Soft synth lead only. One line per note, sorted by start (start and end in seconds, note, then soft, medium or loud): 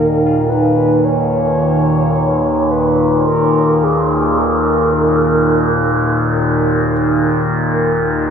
0.00 0.51 A#4 loud
0.49 1.06 B4 loud
1.04 2.73 C#5 loud
2.71 3.26 B4 medium
3.27 3.85 A#4 medium
3.84 4.40 G#4 medium
4.38 6.60 A#4 medium
7.71 8.30 A#4 medium